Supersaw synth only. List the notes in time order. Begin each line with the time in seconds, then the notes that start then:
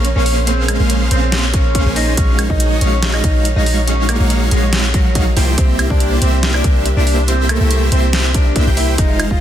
0.16 A#3 C#4 G#4 C5 F5
0.80 A#3 C#4 G#4 C5 F5
1.11 A#3 C#4 G#4 C5 F5
1.86 A#3 C#4 G#4 C5 G#5
2.17 G#3 D#4 F#4 F5
2.50 G#3 D#4 F#4 C#5 D#5
2.81 G#3 D#4 F#4 C#5 F5
3.24 G#3 D#4 F#4 C#5 F5
3.56 G#3 D#4 F#4 C#5 F5
4.20 G#3 D#4 F#4 C#5 F5
4.51 G#3 D#4 F#4 C#5 F5
5.37 A#3 E4 G4 C5 G5
5.90 A#3 E4 G4 C5 D5
6.22 A#3 E4 G4 C5 E5
6.64 A#3 E4 C5 E5
6.97 A#3 E4 G4 C5 E5
7.61 A#3 E4 G4 C5 E5
7.92 A#3 E4 G4 C5 E5
8.67 A#3 E4 G4 C5 G5
8.98 G#3 D#4 F4 C5
9.31 G#3 D#4 F4 C5 D#5